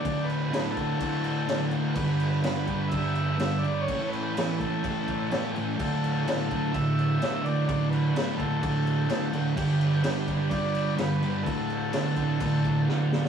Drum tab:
CC |x-x-x-x-x-x-x-x-|x-x-x-x-x-x-x-x-|x-x-x-x-x-x-x-x-|x-x-x-x-x-x-x-x-|
SD |----o-------o---|----o-------o---|----o-------o---|----o-------o---|
BD |o-----o-o-------|o-----o-o-------|o-----o-o-o-----|o-----o-o-------|

CC |x-x-x-x-x-x-x-x-|x-x-x-x-x-x-x-x-|x-x-x-x-x-x-----|
SD |----o-------o---|----o-------o---|----o-------o-oo|
BD |o-----o-o-------|o-----o-o-------|o-----o-o-o-----|